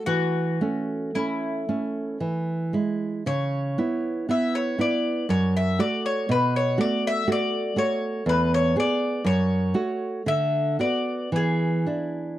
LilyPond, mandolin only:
\new Staff \with { instrumentName = "Mandolin" } { \time 3/4 \key a \major \tempo 4 = 58 fis'4 e'4 r4 | cis''4 e''16 cis''16 d''8 cis''16 e''16 d''16 cis''16 | b'16 cis''16 d''16 e''16 d''8 cis''8 b'16 cis''16 d''8 | cis''4 e''8 d''8 gis'4 | }